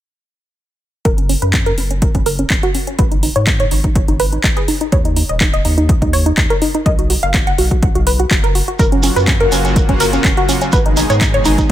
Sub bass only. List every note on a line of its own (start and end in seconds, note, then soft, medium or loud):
1.05 1.36 F#1 loud
1.42 1.72 F#2 medium
1.78 2.09 F#1 medium
2.15 2.45 F#1 medium
2.50 2.59 F#1 medium
2.99 3.30 G#1 loud
3.36 3.66 G#2 medium
3.71 4.02 G#1 medium
4.08 4.38 G#1 medium
4.44 4.53 G#1 medium
4.92 5.23 D#2 loud
5.29 5.59 D#1 medium
5.65 5.96 D#2 loud
6.02 6.32 D#2 medium
6.37 6.46 D#2 medium
6.86 7.17 B1 loud
7.23 7.53 F#1 medium
7.58 7.89 B1 medium
7.95 8.25 B1 loud
8.31 8.62 F#1 medium
8.79 9.10 F#1 loud
9.16 9.46 F#2 medium
9.52 9.83 F#1 medium
9.89 10.19 F#1 medium
10.24 10.33 F#1 medium
10.73 11.04 G#1 loud
11.10 11.40 G#2 medium
11.45 11.72 G#1 loud